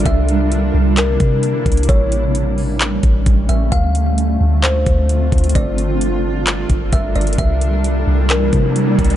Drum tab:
HH |x---x---x-------x---x---x---xxxx|x---x---x---o---x---x---x---x---|x---x---x-------x---x---x---xxxx|x---x---x-------x---x---x---xxxx|
CP |----------------x---------------|----------------x---------------|----------------x---------------|----------------x---------------|
BD |o-------------------o-------o---|o-------------------o---o-------|o-------------------o-------o---|o-------------------o---o-------|

HH |x---x---x-------x---x---x---xxx-|
CP |----------------x---------------|
BD |o-------------------o-------o---|